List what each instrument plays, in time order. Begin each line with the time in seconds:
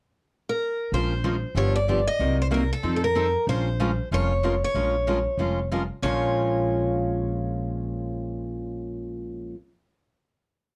0.49 steel-string acoustic guitar A#4
0.92 upright bass A#1, steel-string acoustic guitar F3 G#3 C#4 F4 A#4 C5
1.24 steel-string acoustic guitar F3 G#3 C#4 F4 A#4
1.55 upright bass G1, steel-string acoustic guitar D3 F3 B3 D4 G4 C#5
1.76 steel-string acoustic guitar D5
1.88 steel-string acoustic guitar D3 F3 B3 D4 G4
2.07 steel-string acoustic guitar D#5
2.19 upright bass C2, steel-string acoustic guitar C3 F#3 A#3 D#4 A#4
2.42 steel-string acoustic guitar C5
2.51 steel-string acoustic guitar C3 F#3 A#3 D#4 A#4
2.73 steel-string acoustic guitar A4
2.83 upright bass F2, steel-string acoustic guitar F3 C4 D#4 A4
2.96 steel-string acoustic guitar A4
3.04 steel-string acoustic guitar A#4
3.15 steel-string acoustic guitar F3 C4 D#4 A4
3.47 upright bass A#1, steel-string acoustic guitar F3 G#3 C#4 F4 A#4 C5
3.80 steel-string acoustic guitar F3 G#3 C#4 F4 A#4
4.11 upright bass F1, steel-string acoustic guitar F3 G#3 C#4 F4 A#4 C#5
4.43 steel-string acoustic guitar F3 G#3 C#4 F4 A#4
4.64 steel-string acoustic guitar C#5
4.74 upright bass A#1, steel-string acoustic guitar F3 G#3 C#4 F4 A#4
5.07 steel-string acoustic guitar F3 G#3 C#4 F4 A#4
5.38 upright bass F1, steel-string acoustic guitar F3 G#3 C#4 F4 A#4
5.71 steel-string acoustic guitar F3 G#3 C#4 F4 A#4
6.02 upright bass A#1, steel-string acoustic guitar A#2 F3 G#3 C#4 F4 A#4 C#5